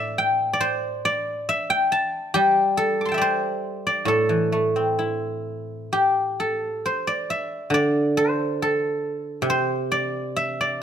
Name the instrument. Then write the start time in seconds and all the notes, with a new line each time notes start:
guzheng
Already playing: A2 A4 C5 D5 E5
0.18 G5
0.53 D5
0.60 C5
1.05 D5
1.49 E5
1.70 G5
1.92 A5
2.34 G3 G4
2.77 A4
3.01 D6
3.05 A5 C6
3.12 E5 G5
3.18 C5 D5
3.87 D5
4.05 A2 A4
4.29 E3
4.52 A3
4.76 C4
4.99 E4
5.93 G4
6.40 A4
6.86 C5
7.07 D5
7.30 E5
7.70 D3 D5
8.17 C5
8.62 A4
9.42 C3
9.50 C5
9.92 D5
10.36 E5
10.61 D5